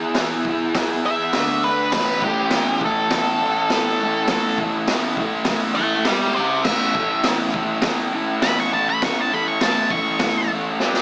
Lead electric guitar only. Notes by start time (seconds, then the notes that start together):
1.06 E5
1.64 B4
1.95 B4
2.25 G4
2.85 A4
3.73 A4
4.30 A4
5.75 E5 A5
6.07 D5 G5
6.34 C5 E5
6.67 E5
8.43 B5
8.60 C#6
8.73 A5
8.90 B5
9.04 C#6
9.22 A5
9.33 B5
9.48 C#6
9.63 A5
9.91 C#6